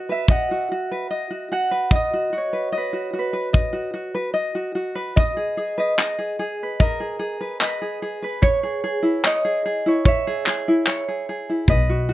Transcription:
Already playing: ukulele F#4 D#5, harp B4 D#5
0.09 ukulele B4, harp E5
0.28 ukulele D#5, harp F#5, kick
0.51 ukulele F#4
0.72 ukulele F#4
0.92 ukulele B4
1.11 ukulele D#5
1.30 ukulele F#4
1.52 ukulele F#4, harp F#5
1.71 ukulele B4
1.91 ukulele D#5, kick
1.95 harp D#5
2.13 ukulele F#4
2.33 ukulele F#4
2.38 harp C#5
2.53 ukulele B4
2.72 ukulele D#5
2.77 harp B4
2.93 ukulele F#4
3.13 ukulele F#4
3.19 harp B4
3.33 ukulele B4
3.53 ukulele D#5, kick
3.73 ukulele F#4
3.94 ukulele F#4
4.15 ukulele B4
4.34 ukulele D#5
4.55 ukulele F#4
4.75 ukulele F#4
4.95 ukulele B4
5.16 ukulele D#5, harp D#5, kick
5.37 ukulele G#4
5.57 ukulele G#4
5.78 ukulele B4, harp D#5
5.98 ukulele D#5, clap
6.19 ukulele G#4
6.39 ukulele G#4
6.63 harp B4
6.80 harp A#4, ukulele D#5, kick
7.00 ukulele G#4
7.19 ukulele G#4
7.41 ukulele B4
7.61 harp B4, ukulele D#5, clap
7.82 ukulele G#4
8.02 ukulele G#4
8.22 ukulele B4, harp B4
8.42 ukulele C#5, harp C#5, kick
8.63 ukulele G#4
8.84 ukulele G#4
9.03 ukulele E4
9.24 ukulele C#5, harp D#5, clap
9.45 ukulele G#4
9.66 ukulele G#4
9.86 ukulele E4, harp C#5
10.05 ukulele C#5, harp E5, kick
10.27 ukulele G#4
10.46 ukulele G#4, clap
10.68 ukulele E4
10.87 ukulele C#5, clap
11.08 ukulele G#4
11.29 ukulele G#4
11.50 ukulele E4
11.68 upright bass B1, harp B4, ukulele D#5, kick
11.89 ukulele F#4
12.09 ukulele F#4

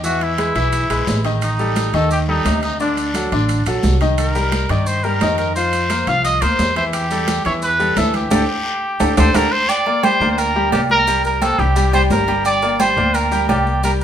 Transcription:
Already playing: upright bass E2
0.04 grand piano E3 E4 E5, trumpet F#4, high conga, long guiro, maracas
0.21 trumpet E4, high conga, high timbale
0.38 grand piano G#3 G#4 B4, high conga, high timbale, low timbale, short guiro, maracas
0.55 upright bass B1, grand piano E3 E4 E5, high conga, high timbale, short guiro, maracas
0.72 high conga, high timbale, long guiro, maracas
0.90 upright bass A#1, grand piano G#3 G#4 B4, high conga, high timbale, maracas
1.07 upright bass A1, high conga, low timbale, short guiro, maracas
1.24 grand piano D#3 D#4 D#5, high conga, high timbale, short guiro, maracas
1.42 trumpet D#4, high conga, high timbale, long guiro, maracas
1.59 grand piano G3 G4 A4, high conga, maracas
1.76 high conga, high timbale, low timbale, short guiro, maracas
1.93 upright bass D#2, grand piano D#3 D#4 D#5, trumpet A4, high conga, high timbale, short guiro, maracas
2.11 trumpet G4, high conga, long guiro, maracas
2.28 grand piano G3 G4 A4, trumpet D#4, high conga
2.45 upright bass D2, grand piano C3 D#4 D#5, high conga, high timbale, low timbale, short guiro, maracas
2.62 trumpet D#4, high timbale, short guiro, maracas
2.80 grand piano D3 D4 D5, trumpet D4, high conga, long guiro, maracas
2.97 trumpet D4, high conga, high timbale, maracas
3.14 grand piano F#3 F#4 A4, high conga, high timbale, low timbale, short guiro, maracas
3.32 upright bass A1, grand piano D3 D4 D5, high conga, high timbale, short guiro, maracas
3.49 high conga, high timbale, long guiro, maracas
3.66 upright bass A#1, grand piano F#3 F#4 A4, high conga, high timbale, maracas
3.83 upright bass C2, high conga, low timbale, short guiro, maracas
4.01 grand piano D#3 D#4 D#5, high conga, high timbale, short guiro, maracas
4.18 trumpet A#4, high conga, high timbale, long guiro, maracas
4.35 grand piano G3 G4 A#4, high conga, maracas
4.52 high conga, high timbale, low timbale, short guiro, maracas
4.69 upright bass G2, grand piano D#3 D#4 D#5, trumpet D5, high conga, high timbale, short guiro, maracas
4.87 trumpet C5, high conga, long guiro, maracas
5.04 grand piano G3 G4 A#4, trumpet A#4, high conga, maracas
5.21 upright bass F2, grand piano D#3 D#4 D#5, high conga, high timbale, low timbale, short guiro, maracas
5.38 trumpet A#4, high timbale, short guiro, maracas
5.56 grand piano F3 F4 F5, trumpet C5, high conga, long guiro, maracas
5.73 high conga, high timbale, maracas
5.90 grand piano A#3 A#4 C5, high conga, high timbale, low timbale, short guiro, maracas
6.07 upright bass C2, grand piano F3 F4 F5, trumpet F5, high conga, high timbale, short guiro, maracas
6.24 trumpet D#5, high conga, high timbale, maracas
6.42 upright bass D2, grand piano A#3 A#4 C5, trumpet C5, high conga, high timbale, maracas
6.59 upright bass E2, high conga, low timbale, short guiro, maracas
6.76 grand piano E3 E4 E5, trumpet C5, high conga, high timbale, short guiro, maracas
6.93 trumpet G4, high conga, high timbale, long guiro, maracas
7.11 grand piano G3 G4 A4, high conga, maracas
7.28 high conga, high timbale, low timbale, short guiro, maracas
7.45 upright bass E2, grand piano E3 E4 E5, trumpet C#5, high conga, high timbale, short guiro, maracas
7.62 trumpet B4, high conga, long guiro, maracas
7.79 grand piano G3 G4 A4, high conga, maracas
7.97 upright bass D2, grand piano E3 E4 E5, trumpet A4, high conga, high timbale, low timbale, short guiro, maracas
8.14 trumpet G4, high conga, high timbale, short guiro, maracas
8.31 upright bass D2, grand piano D4 G4 A4, high conga, high timbale, long guiro, maracas
9.00 upright bass D2, grand piano D4 G4 A4, high conga, high timbale, long guiro, maracas
9.17 upright bass D2, grand piano D4 G4 A4, trumpet C5, high conga, high timbale, long guiro, maracas
9.34 upright bass D2, grand piano D4 G4 A4, trumpet A#4, high conga, high timbale, long guiro, maracas
9.52 trumpet C5
9.69 trumpet D5, high conga, low agogo, maracas
9.86 grand piano A#3 A#4 D5, high conga, low agogo
10.03 grand piano G3 G4 G5, trumpet C5, high conga, low timbale, low agogo, maracas
10.21 upright bass D2, grand piano A#3 A#4 D5, high conga, maracas
10.31 trumpet C5
10.38 trumpet A#4, high conga, low agogo, maracas
10.55 grand piano G3 G4 G5, high conga
10.72 upright bass C2, grand piano A#3 A#4 D5, trumpet G4, high conga, low timbale, low agogo, maracas
10.90 trumpet A#4, high conga, maracas
11.07 grand piano G3 G4 G5, high conga, low agogo, maracas
11.24 trumpet A#4, high conga, maracas
11.42 grand piano A#3 A#4 C5, trumpet A4, high conga, low timbale, low agogo, maracas
11.58 upright bass C2, grand piano G3 G4 G5, trumpet G4, high conga, maracas
11.76 grand piano G3 G4 G5, high conga, low agogo, maracas
11.93 grand piano G3 G4 G5, trumpet C5, high conga, low agogo, maracas
12.10 upright bass G1, trumpet A#4, high conga, low timbale, maracas
12.28 grand piano G3 G4 G5, low agogo, maracas
12.45 trumpet D5, high conga, low agogo, maracas
12.62 grand piano A#3 A#4 D5, high conga, low agogo, maracas
12.80 grand piano G3 G4 G5, trumpet C5, high conga, low timbale, low agogo, maracas
12.97 upright bass D2, grand piano A#3 A#4 D5, high conga, maracas
13.14 trumpet A#4, high conga, low agogo, maracas
13.31 grand piano G3 G4 G5, high conga, maracas
13.49 upright bass C2, grand piano A#3 A#4 D5, trumpet G4, high conga, low timbale, low agogo, maracas
13.67 maracas
13.84 grand piano G3 G4 G5, trumpet A#4, high conga, low agogo, maracas

